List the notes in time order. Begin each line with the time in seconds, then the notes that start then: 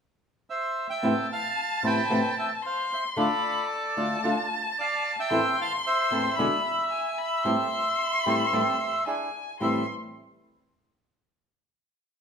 0.50 C5 E5
0.90 E5 G5
1.02 A2 C3 E3 B3 C4 E4 A4 A5
1.32 F5 A5
1.83 A2 C3 E3 B3 C4 E4 A4 G5 B5
2.09 A2 C3 E3 B3 C4 E4 A4
2.38 E5 G5
2.63 C5 F5 C6
2.92 C5 E5
3.17 D3 A3 D4 F4 A4 D5 B5
3.70 A5
3.97 D3 A3 D4 F4 A4
4.23 D3 A3 D4 F4 A4
4.79 D5 F5
5.20 E5 G5
5.30 E2 A2 E3 A3 C4 E4 A4 C6
5.61 F5 A5
5.87 C5 E5
6.11 E2 A2 E3 A3 C4 E4 A4
6.35 E2 B2 D3 G#3 D4 E4 G#4 B5
6.39 B3 E4
6.91 G#5
7.18 B5
7.44 A2 E3 G3 C4 E4 G4 A4 C6
8.26 A2 E3 G3 C4 E4 G4 A4
8.52 A2 E3 G3 C4 E4 G4 A4
9.05 D4 E4 G#4 G#5
9.60 A2 E3 G3 C4 E4 G4 A4 E5 C6